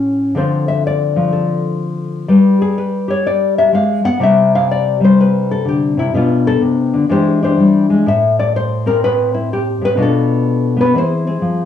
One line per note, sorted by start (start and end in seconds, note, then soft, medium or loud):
0.00 0.34 A2 medium
0.00 0.33 C#4 medium
0.00 0.34 E4 medium
0.00 0.33 G4 soft
0.35 2.26 D3 medium
0.35 1.16 F3 soft
0.35 2.28 C4 soft
0.35 1.31 A4 soft
0.35 0.68 C5 soft
0.68 0.83 E5 medium
0.87 1.65 D5 medium
1.16 2.26 F3 medium
1.33 2.26 A4 soft
2.28 3.72 G3 medium
2.28 2.61 G4 soft
2.28 2.77 B4 soft
2.62 2.76 G#4 medium
2.78 3.09 B4 medium
3.08 4.18 G4 medium
3.08 3.25 C#5 medium
3.27 3.57 D5 medium
3.58 3.73 E5 medium
3.72 4.04 G#3 medium
3.72 4.05 F5 medium
4.04 4.20 B3 medium
4.04 4.21 F#5 loud
4.20 5.96 C3 medium
4.20 4.99 G3 soft
4.20 6.13 C4 soft
4.20 5.17 G4 soft
4.20 4.54 E5 medium
4.55 4.70 F5 medium
4.71 5.02 D5 medium
5.00 6.13 G3 medium
5.00 5.18 C5 medium
5.21 5.51 B4 medium
5.51 5.66 A4 medium
5.65 5.97 D3 soft
5.65 5.99 G4 medium
5.97 6.13 C3 medium
5.97 6.14 E4 medium
6.14 6.61 B2 medium
6.14 7.08 B3 soft
6.14 7.08 D4 soft
6.14 6.47 F4 medium
6.47 6.62 A4 medium
6.62 6.93 C3 medium
6.94 7.09 D3 medium
7.09 8.03 E3 medium
7.09 7.57 G#3 medium
7.09 7.41 D4 medium
7.09 7.42 G4 medium
7.09 7.42 C5 medium
7.43 8.04 D4 medium
7.43 8.05 G4 medium
7.43 8.05 C5 medium
7.57 7.89 G3 medium
7.90 8.06 G#3 medium
8.06 9.80 A2 medium
8.06 8.39 E5 medium
8.39 8.54 D5 medium
8.56 8.87 C5 medium
8.86 9.96 C4 medium
8.86 9.02 A#4 medium
9.04 9.34 B4 loud
9.34 9.50 E4 medium
9.53 9.84 G4 medium
9.81 9.96 A2 medium
9.81 9.98 B4 loud
9.97 10.92 B2 medium
9.97 10.76 B3 medium
9.97 10.92 D4 soft
9.97 10.92 F4 soft
10.02 10.80 A4 medium
10.77 10.91 B3 medium
10.77 10.95 B4 loud
10.94 11.41 E3 medium
10.94 11.26 C4 soft
10.94 11.26 G#4 medium
10.98 11.44 C5 medium
11.27 11.65 C4 soft
11.27 11.65 G#4 soft
11.42 11.65 F3 medium